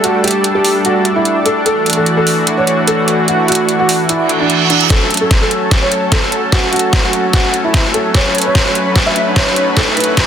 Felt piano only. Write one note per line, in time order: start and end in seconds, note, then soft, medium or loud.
0.04 0.18 F#4 medium
0.24 0.44 G4 medium
0.55 0.75 G4 medium
0.85 1.05 F#4 medium
1.16 1.36 E4 medium
1.46 1.59 A4 medium
1.66 1.86 A4 medium
1.97 2.10 A4 medium
2.17 2.44 A4 medium
2.58 2.78 C#5 medium
2.88 3.15 A4 medium
3.28 3.42 F#4 medium
3.48 3.69 F#4 medium
3.79 4.00 F#4 medium
4.09 4.29 E4 medium
4.40 4.60 D4 medium
4.70 4.84 D4 medium
4.90 5.11 A4 medium
5.21 5.34 A4 medium
5.41 5.68 A4 medium
5.82 6.02 C#5 medium
6.12 6.39 A4 medium
6.52 6.66 F#4 medium
6.73 6.93 F#4 medium
7.04 7.24 F#4 medium
7.33 7.54 F#4 medium
7.64 7.85 E4 medium
7.94 8.08 A4 medium
8.15 8.35 C#5 medium
8.45 8.59 C#5 medium
8.66 8.92 C#5 medium
9.06 9.27 E5 medium
9.36 9.64 C#5 medium
9.77 9.91 A4 medium
9.97 10.17 B4 medium